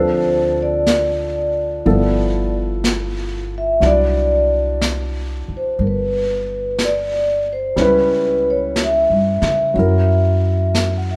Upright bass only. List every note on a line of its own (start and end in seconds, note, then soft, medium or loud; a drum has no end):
0.00 1.81 D2 medium
1.86 3.79 G1 medium
3.81 5.44 C2 medium
5.48 muted upright bass stroke soft
5.79 7.73 G1 medium
7.77 9.05 C#2 medium
9.10 9.40 G2 soft
9.42 9.73 C#3 medium
9.76 11.16 F#2 medium